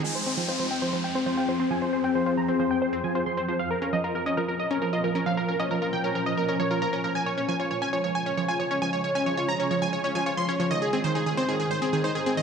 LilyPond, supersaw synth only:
\new Staff \with { instrumentName = "Supersaw synth" } { \time 4/4 \key f \minor \tempo 4 = 135 aes''16 c''16 c''16 g''16 c''16 c''16 g''16 c''16 c''16 g''16 c''16 c''16 g''16 c''16 c''16 aes''16 | c''16 c''16 g''16 c''16 c''16 bes''16 c''16 c''16 g''16 c''16 c''16 aes''16 c''16 c'''16 c''16 c''16 | f''16 bes'16 bes'16 ees''16 bes'16 bes'16 ees''16 bes'16 bes'16 ees''16 bes'16 bes'16 ees''16 bes'16 bes'16 f''16 | bes'16 bes'16 ees''16 bes'16 bes'16 g''16 bes'16 bes'16 ees''16 bes'16 bes'16 des''16 bes'16 bes'16 bes'16 bes'16 |
aes''16 des''16 des''16 aes''16 des''16 des''16 aes''16 des''16 des''16 aes''16 des''16 des''16 aes''16 des''16 des''16 aes''16 | des''16 des''16 aes''16 des''16 des''16 bes''16 des''16 des''16 aes''16 des''16 des''16 aes''16 des''16 c'''16 des''16 des''16 | ees''16 aes'16 aes'16 c''16 aes'16 aes'16 c''16 aes'16 aes'16 c''16 aes'16 aes'16 c''16 aes'16 aes'16 ees''16 | }